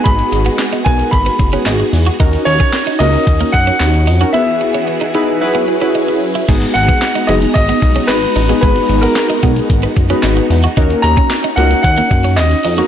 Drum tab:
CC |----------------|----------------|----------------|x---------------|
HH |xxxxxxxxxxxxxxox|xxxxxxxxxxxxxxox|----------------|xxxxxxxxxxxxxxox|
CP |----x-------x---|----x-------x---|----------------|----x-------x---|
SD |----o-------o---|----o-------o---|----------------|----o-------o---|
BD |o-----o-o-o-----|o--o----o-o-----|----------------|o--o----o-o-----|

CC |----------------|----------------|
HH |xxxxxxxxxxxxxxox|xxxxxxxxxxxxxxox|
CP |----x-------x---|----x-------x---|
SD |----o-------o---|----o-------o---|
BD |o-----o-o-o-----|o--o----o-o-----|